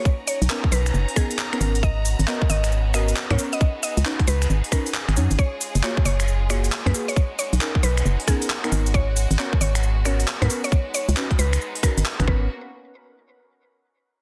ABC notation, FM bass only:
X:1
M:4/4
L:1/16
Q:"Swing 16ths" 1/4=135
K:G#dor
V:1 name="FM bass" clef=bass
z3 B,,, z2 B,,,2 F,,, z4 z G,,,2- | G,,,3 G,,, z2 G,,,6 z G,, z2 | z3 C,, z2 C,,2 G,,, z4 G,,, F,, G,,, | z3 F,,, z2 F,,,6 z F,, z2 |
z3 B,,, z2 B,,,2 F,,, z4 z G,,,2- | G,,,3 G,,, z2 G,,,6 z G,, z2 | z3 C,, z2 C,,2 z3 G,,, z G,,, G,,,2 | z16 |]